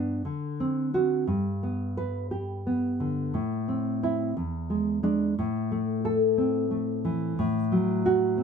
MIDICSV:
0, 0, Header, 1, 2, 480
1, 0, Start_track
1, 0, Key_signature, 1, "major"
1, 0, Tempo, 1027397
1, 595, Time_signature, 2, 2, 24, 8
1, 2035, Tempo, 1001669
1, 3988, End_track
2, 0, Start_track
2, 0, Title_t, "Nylon-string guitar"
2, 0, Program_c, 0, 24
2, 0, Note_on_c, 0, 43, 53
2, 0, Note_on_c, 0, 59, 40
2, 0, Note_on_c, 0, 62, 55
2, 98, Note_off_c, 0, 43, 0
2, 98, Note_off_c, 0, 59, 0
2, 99, Note_off_c, 0, 62, 0
2, 116, Note_on_c, 0, 50, 44
2, 281, Note_on_c, 0, 60, 42
2, 433, Note_off_c, 0, 60, 0
2, 438, Note_on_c, 0, 60, 38
2, 440, Note_on_c, 0, 66, 57
2, 581, Note_off_c, 0, 50, 0
2, 581, Note_off_c, 0, 60, 0
2, 581, Note_off_c, 0, 66, 0
2, 595, Note_on_c, 0, 43, 57
2, 762, Note_on_c, 0, 59, 44
2, 922, Note_on_c, 0, 71, 61
2, 1078, Note_off_c, 0, 71, 0
2, 1080, Note_on_c, 0, 67, 37
2, 1240, Note_off_c, 0, 59, 0
2, 1245, Note_on_c, 0, 59, 43
2, 1402, Note_on_c, 0, 50, 46
2, 1541, Note_off_c, 0, 43, 0
2, 1560, Note_off_c, 0, 67, 0
2, 1560, Note_on_c, 0, 45, 55
2, 1561, Note_off_c, 0, 50, 0
2, 1563, Note_off_c, 0, 59, 0
2, 1720, Note_on_c, 0, 60, 45
2, 1877, Note_off_c, 0, 60, 0
2, 1883, Note_on_c, 0, 60, 44
2, 1885, Note_on_c, 0, 64, 59
2, 2021, Note_off_c, 0, 45, 0
2, 2022, Note_off_c, 0, 60, 0
2, 2023, Note_off_c, 0, 64, 0
2, 2040, Note_on_c, 0, 40, 49
2, 2200, Note_on_c, 0, 56, 43
2, 2353, Note_off_c, 0, 56, 0
2, 2358, Note_on_c, 0, 56, 45
2, 2361, Note_on_c, 0, 62, 72
2, 2504, Note_off_c, 0, 56, 0
2, 2504, Note_off_c, 0, 62, 0
2, 2507, Note_off_c, 0, 40, 0
2, 2529, Note_on_c, 0, 45, 59
2, 2686, Note_on_c, 0, 57, 48
2, 2847, Note_on_c, 0, 69, 66
2, 3004, Note_on_c, 0, 60, 47
2, 3096, Note_off_c, 0, 69, 0
2, 3156, Note_off_c, 0, 57, 0
2, 3162, Note_on_c, 0, 57, 47
2, 3324, Note_on_c, 0, 52, 54
2, 3461, Note_off_c, 0, 45, 0
2, 3478, Note_off_c, 0, 57, 0
2, 3478, Note_off_c, 0, 60, 0
2, 3480, Note_off_c, 0, 52, 0
2, 3488, Note_on_c, 0, 45, 68
2, 3646, Note_on_c, 0, 54, 47
2, 3809, Note_on_c, 0, 66, 74
2, 3961, Note_on_c, 0, 60, 46
2, 3988, Note_off_c, 0, 45, 0
2, 3988, Note_off_c, 0, 54, 0
2, 3988, Note_off_c, 0, 60, 0
2, 3988, Note_off_c, 0, 66, 0
2, 3988, End_track
0, 0, End_of_file